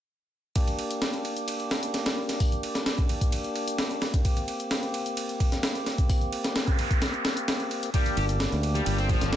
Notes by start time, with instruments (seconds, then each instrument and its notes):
0.56 tonewheel organ A#3 D4 G4, kick, closed hi-hat, ride
0.67 closed hi-hat, ride
0.79 ride
0.91 closed hi-hat
1.02 snare, closed hi-hat, ride
1.14 closed hi-hat
1.25 ride
1.37 closed hi-hat
1.48 closed hi-hat, ride
1.60 closed hi-hat
1.71 snare, ride
1.83 closed hi-hat
1.94 snare, closed hi-hat, ride
2.06 snare, closed hi-hat, ride
2.29 snare, closed hi-hat, ride
2.40 kick, closed hi-hat, open hi-hat
2.52 closed hi-hat
2.63 ride
2.75 snare, closed hi-hat
2.86 snare, closed hi-hat, ride
2.98 kick, closed hi-hat
3.09 ride
3.21 kick, closed hi-hat
3.32 closed hi-hat, ride
3.44 closed hi-hat
3.56 ride
3.68 closed hi-hat
3.78 snare, closed hi-hat, ride
3.91 closed hi-hat
4.02 snare, ride
4.14 kick, closed hi-hat
4.25 tonewheel organ C4, kick, closed hi-hat, ride
4.37 closed hi-hat, ride
4.48 ride
4.60 closed hi-hat
4.71 snare, closed hi-hat, ride
4.83 closed hi-hat
4.94 ride
5.06 closed hi-hat
5.17 closed hi-hat, ride
5.29 closed hi-hat
5.40 kick, ride
5.52 snare, closed hi-hat
5.63 snare, closed hi-hat, ride
5.75 closed hi-hat
5.86 snare, ride
5.98 kick, closed hi-hat
6.09 kick, closed hi-hat, open hi-hat, noise sweep
6.21 closed hi-hat
6.33 ride
6.44 snare, closed hi-hat
6.56 snare, closed hi-hat, ride
6.68 kick, closed hi-hat
6.79 ride
6.91 kick, closed hi-hat
7.02 snare, closed hi-hat, ride
7.14 closed hi-hat
7.25 snare, ride
7.37 closed hi-hat
7.48 snare, closed hi-hat, ride
7.60 closed hi-hat
7.71 ride
7.83 closed hi-hat
7.94 distorted electric guitar G3, tonewheel organ A#3 D4 G4, kick, closed hi-hat, ride
8.06 closed hi-hat, ride
8.17 fingered electric bass G1, distorted electric guitar G4, ride
8.29 closed hi-hat
8.40 snare, closed hi-hat, ride
8.52 fingered electric bass D2, closed hi-hat
8.63 ride
8.75 distorted electric guitar G3, closed hi-hat
8.86 fingered electric bass G1, distorted electric guitar G3, closed hi-hat, ride
8.98 distorted electric guitar C4, closed hi-hat
9.09 distorted electric guitar F3, kick, ride
9.21 fingered electric bass G1, snare, closed hi-hat
9.32 distorted electric guitar A#3, snare, closed hi-hat, ride